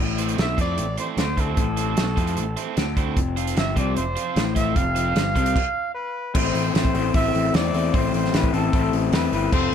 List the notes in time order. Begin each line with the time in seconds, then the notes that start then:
Already playing: A2
0.00 A1
0.18 A3 C4 E4 C5, closed hi-hat
0.29 closed hi-hat
0.38 B1 B2 E5, snare, closed hi-hat
0.57 F2 F3 A3 C4 E4 C5, kick, closed hi-hat
0.61 D5
0.78 A1 A2, closed hi-hat
0.97 A3 C4 E4 C5, closed hi-hat
1.17 D2 D3 C5, snare, closed hi-hat
1.37 A3 C4 E4 A4 C5, kick, closed hi-hat
1.57 A1 A2, kick, closed hi-hat
1.77 A3 C4 E4 C5, closed hi-hat
1.97 B1 B2, snare, closed hi-hat
2.16 F2 F3 A3 C4 E4 C5, kick, closed hi-hat
2.27 closed hi-hat
2.37 A1 A2, closed hi-hat
2.57 A3 C4 E4 C5, closed hi-hat
2.77 D2 D3, snare, closed hi-hat
2.97 A3 C4 E4 C5, kick, closed hi-hat
3.17 F1 F2, kick, closed hi-hat
3.37 F3 C4 F4 C5, closed hi-hat
3.47 closed hi-hat
3.56 G1 G2 E5, snare, closed hi-hat
3.76 C2 C3 F3 C4 F4 C5 D5, kick, closed hi-hat
3.96 F1 F2 C5, closed hi-hat
4.16 F3 C4 F4 C5, closed hi-hat
4.36 A1 A2, snare, closed hi-hat
4.55 F3 C4 F4 C5 E5, kick, snare, closed hi-hat
4.76 F1 F2 F5, kick, closed hi-hat
4.95 F3 C4 F4 C5, closed hi-hat
5.16 G1 G2, snare, closed hi-hat
5.35 C2 C3 F3 C4 F4 C5, kick, closed hi-hat
5.46 closed hi-hat
5.56 kick, crash
5.94 B4
6.34 A1 A2 E3 A3 C4 E4 C5, kick, crash
6.54 A1, open hi-hat
6.74 A1 A2 E3 A3 C4 E4 C5, snare, open hi-hat
6.85 kick
6.94 A1 A2 E3 A3 C4 E4 C5, open hi-hat
7.14 A1 A2 E3 A3 C4 E4 C5 E5, kick, open hi-hat
7.35 A1, open hi-hat
7.54 E2 A2 E3 A3 C4 E4 C5 D5, snare, open hi-hat
7.73 E2 A2 E3 A3 C4 E4 C5, open hi-hat
7.93 A1 A2 E3 A3 C4 E4 C5, kick, open hi-hat
8.14 A1 C5, open hi-hat
8.25 snare
8.32 A1 A2 E3 A3 C4 E4 B4 C5, snare, open hi-hat
8.44 kick
8.53 A1 A2 E3 A3 C4 E4 A4 C5, open hi-hat
8.72 A1 A2 E3 A3 C4 E4 C5, kick, open hi-hat
8.93 A1, open hi-hat
9.12 E2 A2 E3 A3 C4 E4 B4 C5, snare, open hi-hat
9.32 G1 A2 E3 A3 C4 E4 B4 C5, open hi-hat
9.51 F1 F3 A3 C4 F4 A4 C5, kick, crash